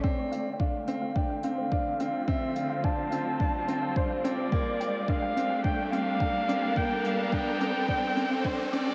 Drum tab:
HH |-x-x-x-x|-x-x-x-x|-x-x-x-x|-x-x-x-x|
BD |o-o-o-o-|o-o-o-o-|o-o-o-o-|o-o-o-o-|